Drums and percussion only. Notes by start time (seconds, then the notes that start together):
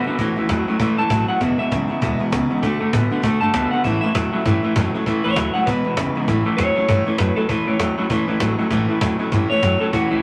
0.07 cajon slap
0.12 cajon slap
0.19 cajon bass, cajon slap
0.36 cajon slap
0.43 cajon slap
0.49 cajon bass, cajon slap
0.67 cajon slap
0.79 cajon bass, cajon slap
0.98 cajon slap
1.04 cajon slap
1.10 cajon bass, cajon slap
1.29 cajon slap
1.35 cajon slap
1.41 cajon bass, cajon slap
1.59 cajon slap
1.65 cajon slap
1.71 cajon bass, cajon slap
1.90 cajon slap
2.02 cajon bass, cajon slap
2.32 cajon bass, cajon slap
2.50 cajon slap
2.57 cajon slap
2.63 cajon bass, cajon slap
2.81 cajon slap
2.93 cajon bass, cajon slap
3.18 cajon slap
3.23 cajon bass, cajon slap
3.41 cajon slap
3.54 cajon bass, cajon slap
3.72 cajon slap
3.78 cajon slap
3.84 cajon bass, cajon slap
4.02 cajon slap
4.09 cajon slap
4.15 cajon bass, cajon slap
4.33 cajon slap
4.40 cajon slap
4.46 cajon bass, cajon slap
4.64 cajon slap
4.70 cajon slap
4.76 cajon bass, cajon slap
4.94 cajon slap
5.00 cajon slap
5.06 cajon bass, cajon slap
5.24 cajon slap
5.36 cajon bass, cajon slap
5.54 cajon slap
5.67 cajon bass, cajon slap
5.85 cajon slap
5.97 cajon bass, cajon slap
6.16 cajon slap
6.22 cajon slap
6.28 cajon bass, cajon slap
6.46 cajon slap
6.52 cajon slap
6.58 cajon bass, cajon slap
6.89 cajon bass, cajon slap
7.06 cajon slap
7.12 cajon slap
7.18 cajon bass, cajon slap
7.36 cajon slap
7.49 cajon bass, cajon slap
7.67 cajon slap
7.73 cajon slap
7.79 cajon bass, cajon slap
7.97 cajon slap
8.09 cajon bass, cajon slap
8.27 cajon slap
8.34 cajon slap
8.40 cajon bass, cajon slap
8.70 cajon bass, cajon slap
8.95 cajon slap
9.01 cajon bass, cajon slap
9.19 cajon slap
9.32 cajon bass, cajon slap
9.50 cajon slap
9.57 cajon slap
9.63 cajon bass, cajon slap
9.81 cajon slap
9.93 cajon bass, cajon slap
10.11 cajon slap
10.18 cajon slap